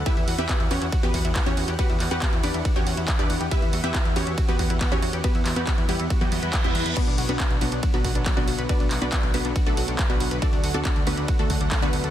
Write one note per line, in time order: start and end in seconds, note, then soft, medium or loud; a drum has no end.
0.00 6.93 F#5 medium
0.06 6.93 E3 medium
0.06 10.38 B3 medium
0.06 0.09 B3 medium
0.06 0.33 E4 medium
0.06 0.33 G4 medium
0.06 0.33 B4 medium
0.06 0.33 E5 loud
0.06 kick loud
0.06 closed hi-hat medium
0.06 ride medium
0.17 0.25 E2 medium
0.17 0.19 E4 medium
0.17 closed hi-hat soft
0.28 0.36 E2 loud
0.28 0.32 F#4 medium
0.28 open hi-hat loud
0.38 0.46 E2 medium
0.38 0.65 E4 medium
0.38 0.43 G4 medium
0.38 0.65 G4 medium
0.38 0.65 B4 medium
0.38 0.65 E5 medium
0.38 closed hi-hat medium
0.38 high conga medium
0.49 0.54 F#4 medium
0.49 kick loud
0.49 clap loud
0.49 closed hi-hat medium
0.49 ride medium
0.49 high conga medium
0.60 0.68 E2 medium
0.60 0.64 E4 medium
0.60 closed hi-hat soft
0.71 0.79 E2 loud
0.71 0.75 B3 medium
0.71 0.97 C#4 medium
0.71 0.97 F#4 medium
0.71 0.97 G4 medium
0.71 0.97 C#5 loud
0.71 open hi-hat loud
0.82 0.90 E2 medium
0.82 0.88 E4 medium
0.82 closed hi-hat medium
0.92 0.95 F#4 medium
0.92 kick loud
0.92 closed hi-hat soft
0.92 ride medium
1.03 1.11 E2 medium
1.03 1.39 B3 medium
1.03 1.39 F#4 medium
1.03 1.08 G4 medium
1.03 1.39 G4 medium
1.03 1.39 B4 loud
1.03 closed hi-hat soft
1.14 1.22 E2 loud
1.14 1.18 F#4 medium
1.14 kick medium
1.14 open hi-hat loud
1.25 1.33 E2 medium
1.25 1.29 E4 medium
1.25 closed hi-hat medium
1.36 1.42 B3 medium
1.36 kick loud
1.36 clap loud
1.36 closed hi-hat medium
1.36 ride medium
1.46 1.54 E2 medium
1.46 1.73 C#4 medium
1.46 1.49 E4 medium
1.46 1.73 F#4 medium
1.46 1.73 G4 medium
1.46 1.73 C#5 loud
1.46 closed hi-hat soft
1.57 1.65 E2 loud
1.57 1.61 F#4 medium
1.57 open hi-hat loud
1.68 1.76 E2 medium
1.68 1.74 G4 medium
1.68 closed hi-hat medium
1.79 1.81 B3 medium
1.79 2.05 F#4 medium
1.79 2.05 G4 medium
1.79 2.05 B4 medium
1.79 2.05 F#5 loud
1.79 kick loud
1.79 closed hi-hat medium
1.79 ride medium
1.90 1.97 E2 medium
1.90 1.92 E4 medium
1.90 closed hi-hat soft
2.00 2.08 E2 loud
2.00 2.05 F#4 medium
2.00 clap medium
2.00 open hi-hat loud
2.11 2.19 E2 medium
2.11 2.38 F#4 medium
2.11 2.15 G4 medium
2.11 2.38 G4 medium
2.11 2.38 B4 medium
2.11 2.38 F#5 medium
2.11 closed hi-hat soft
2.11 high conga medium
2.22 2.26 F#4 medium
2.22 kick loud
2.22 clap loud
2.22 closed hi-hat soft
2.22 ride medium
2.22 high conga medium
2.33 2.41 E2 medium
2.33 2.37 E4 medium
2.33 closed hi-hat soft
2.43 2.51 E2 loud
2.43 2.48 B3 medium
2.43 2.70 D4 medium
2.43 2.70 G4 medium
2.43 2.70 B4 medium
2.43 2.70 D5 loud
2.43 open hi-hat loud
2.54 2.62 E2 medium
2.54 2.61 E4 medium
2.54 closed hi-hat medium
2.65 2.68 F#4 medium
2.65 kick loud
2.65 closed hi-hat soft
2.65 ride medium
2.76 2.84 E2 medium
2.76 3.11 C#4 medium
2.76 3.11 F#4 medium
2.76 2.80 G4 medium
2.76 3.11 G4 medium
2.76 3.11 C#5 medium
2.76 closed hi-hat soft
2.87 2.95 E2 loud
2.87 2.91 F#4 medium
2.87 open hi-hat loud
2.97 3.05 E2 medium
2.97 3.02 E4 medium
2.97 closed hi-hat medium
3.08 3.15 B3 medium
3.08 kick loud
3.08 clap loud
3.08 closed hi-hat medium
3.08 ride medium
3.19 3.27 E2 medium
3.19 3.45 D4 medium
3.19 3.22 E4 medium
3.19 3.45 G4 medium
3.19 3.46 B4 medium
3.19 3.46 D5 medium
3.19 closed hi-hat soft
3.30 3.38 E2 loud
3.30 3.34 F#4 medium
3.30 open hi-hat loud
3.41 3.49 E2 medium
3.41 3.47 G4 medium
3.41 closed hi-hat medium
3.51 3.54 B3 medium
3.51 3.78 E4 medium
3.51 3.78 G4 medium
3.51 3.78 B4 medium
3.51 3.78 E5 loud
3.51 kick loud
3.51 closed hi-hat medium
3.51 ride medium
3.62 3.70 E2 medium
3.62 3.65 E4 medium
3.62 closed hi-hat soft
3.73 3.81 E2 loud
3.73 3.77 F#4 medium
3.73 open hi-hat loud
3.84 3.92 E2 medium
3.84 4.10 E4 medium
3.84 4.10 G4 medium
3.84 3.88 G4 medium
3.84 4.10 B4 medium
3.84 4.10 E5 medium
3.84 closed hi-hat medium
3.84 high conga medium
3.95 3.99 F#4 medium
3.95 kick loud
3.95 clap loud
3.95 closed hi-hat medium
3.95 ride medium
3.95 high conga medium
4.05 4.13 E2 medium
4.05 4.10 E4 medium
4.05 closed hi-hat soft
4.16 4.24 E2 loud
4.16 4.20 B3 medium
4.16 4.43 C#4 medium
4.16 4.43 F#4 medium
4.16 4.43 G4 medium
4.16 4.43 C#5 loud
4.16 open hi-hat loud
4.27 4.35 E2 medium
4.27 4.33 E4 medium
4.27 closed hi-hat medium
4.38 4.40 F#4 medium
4.38 kick loud
4.38 closed hi-hat medium
4.38 ride medium
4.48 4.56 E2 medium
4.48 4.84 B3 medium
4.48 4.84 F#4 medium
4.48 4.53 G4 medium
4.48 4.84 G4 medium
4.48 4.84 B4 medium
4.48 closed hi-hat soft
4.59 4.67 E2 loud
4.59 4.64 F#4 medium
4.59 kick medium
4.59 open hi-hat loud
4.70 4.78 E2 medium
4.70 4.74 E4 medium
4.70 closed hi-hat medium
4.81 4.87 B3 medium
4.81 kick loud
4.81 clap loud
4.81 closed hi-hat medium
4.81 ride medium
4.92 5.00 E2 medium
4.92 5.18 C#4 medium
4.92 4.94 E4 medium
4.92 5.18 F#4 medium
4.92 5.18 G4 medium
4.92 5.18 C#5 medium
4.92 closed hi-hat soft
5.02 5.10 E2 loud
5.02 5.07 F#4 medium
5.02 open hi-hat loud
5.13 5.21 E2 medium
5.13 5.20 G4 medium
5.13 closed hi-hat medium
5.24 5.51 B3 medium
5.24 5.27 B3 medium
5.24 5.51 F#4 medium
5.24 5.51 G4 medium
5.24 5.51 B4 loud
5.24 kick loud
5.24 closed hi-hat medium
5.24 ride medium
5.35 5.43 E2 medium
5.35 5.37 E4 medium
5.35 closed hi-hat soft
5.46 5.54 E2 medium
5.46 5.50 F#4 medium
5.46 clap medium
5.46 open hi-hat loud
5.56 5.64 E2 medium
5.56 5.83 B3 medium
5.56 5.83 F#4 medium
5.56 5.83 G4 medium
5.56 5.61 G4 medium
5.56 5.83 B4 medium
5.56 closed hi-hat medium
5.56 high conga medium
5.67 5.72 F#4 medium
5.67 kick loud
5.67 clap loud
5.67 closed hi-hat medium
5.67 ride medium
5.67 high conga medium
5.78 5.86 E2 medium
5.78 5.82 E4 medium
5.78 closed hi-hat soft
5.89 5.97 E2 loud
5.89 6.15 G3 medium
5.89 6.15 B3 medium
5.89 5.93 B3 medium
5.89 6.15 E4 medium
5.89 6.15 G4 loud
5.89 open hi-hat loud
6.00 6.08 E2 medium
6.00 6.06 E4 medium
6.00 closed hi-hat medium
6.10 6.13 F#4 medium
6.10 kick loud
6.10 closed hi-hat medium
6.10 ride medium
6.10 reverse cymbal medium
6.21 6.29 E2 medium
6.21 6.56 F#3 medium
6.21 6.56 G3 medium
6.21 6.56 B3 medium
6.21 6.56 F#4 loud
6.21 6.25 G4 medium
6.21 closed hi-hat soft
6.32 6.40 E2 loud
6.32 6.36 B3 medium
6.32 open hi-hat loud
6.43 6.51 E2 medium
6.43 6.49 B4 medium
6.43 closed hi-hat medium
6.53 6.56 B4 medium
6.53 kick loud
6.53 clap loud
6.53 closed hi-hat medium
6.53 ride medium
6.64 6.72 E1 medium
6.64 6.91 E3 medium
6.64 6.91 G3 medium
6.64 6.91 B3 medium
6.64 6.69 E4 loud
6.64 6.91 E4 loud
6.64 closed hi-hat soft
6.75 6.83 E2 loud
6.75 6.79 B4 loud
6.75 open hi-hat loud
6.86 6.94 E2 medium
6.86 6.90 B4 loud
6.86 closed hi-hat medium
6.97 12.10 D3 medium
6.97 12.10 F#3 medium
6.97 6.99 B3 medium
6.97 7.23 B3 medium
6.97 7.23 D4 medium
6.97 7.23 F#4 medium
6.97 7.23 B4 loud
6.97 12.10 F#5 medium
6.97 kick loud
6.97 closed hi-hat medium
6.97 crash medium
6.97 ride medium
7.07 7.15 B1 medium
7.07 7.10 D4 medium
7.07 closed hi-hat soft
7.18 7.26 B1 loud
7.18 7.23 F#4 medium
7.18 open hi-hat loud
7.29 7.37 B1 loud
7.29 7.56 B3 medium
7.29 7.56 D4 medium
7.29 7.56 F#4 medium
7.29 7.33 B4 medium
7.29 7.56 B4 medium
7.29 closed hi-hat medium
7.29 high conga medium
7.40 7.44 F#4 medium
7.40 kick loud
7.40 clap loud
7.40 closed hi-hat medium
7.40 ride medium
7.40 high conga medium
7.51 7.59 B1 medium
7.51 7.55 D4 medium
7.51 closed hi-hat soft
7.61 7.69 B1 loud
7.61 7.88 F#3 medium
7.61 7.66 B3 medium
7.61 7.88 B3 medium
7.61 7.88 D4 medium
7.61 7.88 F#4 medium
7.61 open hi-hat loud
7.72 7.80 B1 medium
7.72 7.79 D4 medium
7.72 closed hi-hat medium
7.83 7.86 F#4 medium
7.83 kick loud
7.83 closed hi-hat medium
7.83 ride medium
7.94 8.02 B1 medium
7.94 8.29 F#3 medium
7.94 8.29 B3 medium
7.94 8.29 D4 medium
7.94 8.29 F#4 medium
7.94 7.98 B4 medium
7.94 closed hi-hat soft
8.05 8.13 B1 loud
8.05 8.09 F#4 medium
8.05 kick medium
8.05 open hi-hat loud
8.15 8.23 B1 medium
8.15 8.20 D4 medium
8.15 closed hi-hat medium
8.26 8.33 B3 medium
8.26 kick loud
8.26 clap loud
8.26 closed hi-hat medium
8.26 ride medium
8.37 8.45 B1 medium
8.37 8.63 F#3 medium
8.37 8.63 B3 medium
8.37 8.63 D4 medium
8.37 8.40 D4 medium
8.37 8.63 F#4 medium
8.37 closed hi-hat soft
8.48 8.56 B1 loud
8.48 8.52 F#4 medium
8.48 open hi-hat loud
8.59 8.67 B1 medium
8.59 8.65 B4 medium
8.59 closed hi-hat medium
8.69 8.72 B3 medium
8.69 8.96 D4 medium
8.69 8.96 F#4 medium
8.69 8.96 B4 medium
8.69 8.96 D5 loud
8.69 kick loud
8.69 closed hi-hat medium
8.69 ride medium
8.80 8.88 B1 medium
8.80 8.83 D4 medium
8.80 closed hi-hat soft
8.91 8.99 B1 loud
8.91 8.95 F#4 medium
8.91 clap medium
8.91 open hi-hat loud
9.02 9.10 B1 medium
9.02 9.28 D4 medium
9.02 9.28 F#4 medium
9.02 9.06 B4 medium
9.02 9.28 B4 medium
9.02 9.28 D5 medium
9.02 closed hi-hat medium
9.02 high conga medium
9.12 9.17 F#4 medium
9.12 kick loud
9.12 clap loud
9.12 closed hi-hat medium
9.12 ride medium
9.12 high conga medium
9.23 9.31 B1 medium
9.23 9.28 D4 medium
9.23 closed hi-hat soft
9.34 9.42 B1 loud
9.34 9.38 B3 medium
9.34 9.61 B3 medium
9.34 9.61 D4 medium
9.34 9.61 F#4 medium
9.34 9.61 B4 loud
9.34 open hi-hat loud
9.45 9.53 B1 medium
9.45 9.51 D4 medium
9.45 closed hi-hat medium
9.56 9.58 F#4 medium
9.56 kick loud
9.56 closed hi-hat medium
9.56 ride medium
9.66 9.74 B1 medium
9.66 10.02 A3 medium
9.66 10.02 D4 medium
9.66 10.02 F#4 medium
9.66 10.02 A4 loud
9.66 9.71 B4 medium
9.66 closed hi-hat soft
9.77 9.85 B1 loud
9.77 9.82 F#4 medium
9.77 open hi-hat loud
9.88 9.96 B1 medium
9.88 9.92 D4 medium
9.88 closed hi-hat medium
9.99 10.05 B3 medium
9.99 kick loud
9.99 clap loud
9.99 closed hi-hat medium
9.99 ride medium
10.10 10.18 B1 medium
10.10 10.36 B3 medium
10.10 10.36 D4 medium
10.10 10.12 D4 medium
10.10 10.36 F#4 medium
10.10 10.36 B4 medium
10.10 closed hi-hat soft
10.20 10.28 B1 loud
10.20 10.25 F#4 medium
10.20 open hi-hat loud
10.31 10.39 B1 medium
10.31 10.38 B4 medium
10.31 closed hi-hat medium
10.42 12.10 A3 medium
10.42 10.45 A3 medium
10.42 10.68 D4 medium
10.42 10.68 F#4 medium
10.42 10.68 A4 medium
10.42 10.68 D5 loud
10.42 kick loud
10.42 closed hi-hat medium
10.42 ride medium
10.53 10.61 D2 medium
10.53 10.55 D4 medium
10.53 closed hi-hat soft
10.64 10.72 D2 medium
10.64 10.68 F#4 medium
10.64 open hi-hat loud
10.74 10.82 D2 loud
10.74 11.01 D4 medium
10.74 11.01 F#4 medium
10.74 11.01 A4 medium
10.74 10.79 A4 medium
10.74 11.01 D5 medium
10.74 closed hi-hat medium
10.74 high conga medium
10.85 10.90 F#4 medium
10.85 kick loud
10.85 clap loud
10.85 closed hi-hat medium
10.85 ride medium
10.85 high conga medium
10.96 11.04 D2 medium
10.96 11.00 D4 medium
10.96 closed hi-hat soft
11.07 11.15 D2 loud
11.07 11.11 A3 medium
11.07 11.33 B3 medium
11.07 11.33 D4 medium
11.07 11.33 F#4 medium
11.07 11.33 B4 medium
11.07 open hi-hat loud
11.18 11.26 D2 medium
11.18 11.24 D4 medium
11.18 closed hi-hat medium
11.28 11.31 F#4 medium
11.28 kick loud
11.28 closed hi-hat medium
11.28 ride medium
11.39 11.47 D2 medium
11.39 11.74 A3 medium
11.39 11.74 D4 medium
11.39 11.74 F#4 medium
11.39 11.74 A4 medium
11.39 11.44 A4 medium
11.39 closed hi-hat soft
11.50 11.58 D2 loud
11.50 11.54 F#4 medium
11.50 kick medium
11.50 open hi-hat loud
11.61 11.69 D2 medium
11.61 11.65 D4 medium
11.61 closed hi-hat medium
11.71 11.78 A3 medium
11.71 kick loud
11.71 clap loud
11.71 closed hi-hat medium
11.71 ride medium
11.82 11.90 D2 medium
11.82 12.09 B3 medium
11.82 12.09 D4 medium
11.82 11.85 D4 medium
11.82 12.09 F#4 medium
11.82 12.09 B4 loud
11.82 closed hi-hat soft
11.93 12.01 D2 loud
11.93 11.97 F#4 medium
11.93 open hi-hat loud
12.04 12.10 D2 medium
12.04 12.10 A4 medium
12.04 closed hi-hat medium